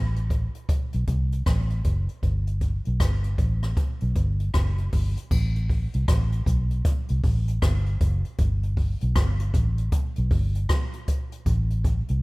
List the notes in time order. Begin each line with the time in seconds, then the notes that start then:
Already playing: A1
0.16 closed hi-hat
0.30 kick, closed hi-hat
0.55 closed hi-hat
0.69 kick, closed hi-hat
0.93 B1, closed hi-hat
1.07 C2, kick, closed hi-hat
1.32 closed hi-hat
1.46 A1, kick, cross-stick, closed hi-hat
1.70 closed hi-hat
1.84 F#1, kick, closed hi-hat
2.09 closed hi-hat
2.23 G1, kick, closed hi-hat
2.47 closed hi-hat
2.61 kick, closed hi-hat
2.85 B1, closed hi-hat
3.00 G1, kick, cross-stick, closed hi-hat
3.24 closed hi-hat
3.38 A1, kick, closed hi-hat
3.63 cross-stick, closed hi-hat
3.77 kick, closed hi-hat
4.01 B1, closed hi-hat
4.15 G1, kick, closed hi-hat
4.40 closed hi-hat
4.54 F#1, kick, cross-stick, closed hi-hat
4.78 closed hi-hat
4.92 G1, kick, open hi-hat
5.17 closed hi-hat
5.31 A1, kick, crash
5.56 closed hi-hat
5.69 kick, open hi-hat
5.94 C2, closed hi-hat
6.08 A1, kick, cross-stick, closed hi-hat
6.32 closed hi-hat
6.46 B1, kick, closed hi-hat
6.71 closed hi-hat
6.85 kick, closed hi-hat
7.09 C2, closed hi-hat
7.23 A1, kick, open hi-hat
7.48 closed hi-hat
7.62 G1, kick, cross-stick, closed hi-hat
7.86 closed hi-hat
8.00 F#1, kick, closed hi-hat
8.25 closed hi-hat
8.38 G1, kick, closed hi-hat
8.63 closed hi-hat
8.77 kick, open hi-hat
9.01 B1, closed hi-hat
9.16 G1, kick, cross-stick, closed hi-hat
9.39 closed hi-hat
9.54 A1, kick, closed hi-hat
9.78 closed hi-hat
9.92 kick, closed hi-hat
10.16 B1, closed hi-hat
10.30 G1, kick, open hi-hat
10.55 closed hi-hat
10.69 kick, cross-stick, closed hi-hat
10.93 closed hi-hat
11.08 kick, closed hi-hat
11.32 closed hi-hat
11.46 A1, kick, closed hi-hat
11.70 closed hi-hat
11.84 kick, closed hi-hat
12.08 C2, closed hi-hat